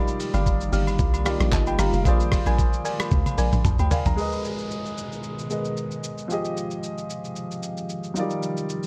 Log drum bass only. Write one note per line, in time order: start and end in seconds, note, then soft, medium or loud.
0.34 0.69 G1 loud
0.73 0.97 G1 loud
0.99 1.37 C2 loud
1.40 1.51 A#1 loud
1.52 1.77 G1 loud
1.79 1.92 G1 loud
1.93 2.04 F1 medium
2.05 2.43 A#1 loud
2.46 2.82 A#1 loud
3.12 3.25 D2 loud
3.38 3.51 A#1 medium
3.53 3.64 A#1 loud
3.65 3.78 C2 medium
3.79 3.90 D2 loud
4.06 4.17 A#1 medium